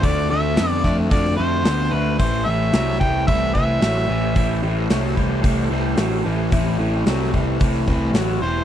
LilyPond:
<<
  \new Staff \with { instrumentName = "Harmonica" } { \time 4/4 \key a \minor \tempo 4 = 111 d''8 e''4 d''8 d''8 c''4 b'8 | c''8 e''4 g''8 e''8 e''4.~ | e''8 r2. r8 | r2. r8 c''8 | }
  \new Staff \with { instrumentName = "Tonewheel organ" } { \time 4/4 \key a \minor <c' f' d''>1 | <a g' c''>1~ | <a g' c''>1 | <a c' g'>1 | }
  \new Staff \with { instrumentName = "Overdriven electric guitar" } { \clef bass \time 4/4 \key a \minor <d a>8 <d a>8 <d b>8 <d a>8 <d a>8 <d a>8 <d b>8 <d a>8 | <a, e>8 <a, e>8 <a, fis>8 <a, e>8 <a, e>8 <a, e>8 <a, fis>8 <a, e>8 | <a, e>8 <a, e>8 <a, fis>8 <a, e>8 <a, e>8 <a, e>8 <a, fis>8 <a, e>8 | <a, e>8 <a, e>8 <a, fis>8 <a, e>8 <a, e>8 <a, e>8 <a, fis>8 <a, e>8 | }
  \new Staff \with { instrumentName = "Picked electric bass" } { \clef bass \time 4/4 \key a \minor d,8 d,8 f,8 f,8 f,8 f,8 d,8 d,8 | a,,8 a,,8 c,8 c,8 c,8 c,8 a,,8 a,,8 | a,,8 a,,8 c,8 c,8 c,8 c,8 a,,8 a,,8 | a,,8 a,,8 c,8 c,8 c,8 c,8 a,,8 e,,8 | }
  \new DrumStaff \with { instrumentName = "Drums" } \drummode { \time 4/4 <hho bd>4 <hho sn>8 <bd sn>8 <hho bd>16 sn8. <hho sn>4 | <hho bd>4 <hho sn>8 bd8 <hho bd>8 bd8 <hho sn>4 | <hho bd>4 <hho sn>8 bd8 <hho bd>4 <hho sn>4 | <hho bd>4 <hho sn>8 bd8 <hho bd>16 sn16 bd8 <hho sn>4 | }
>>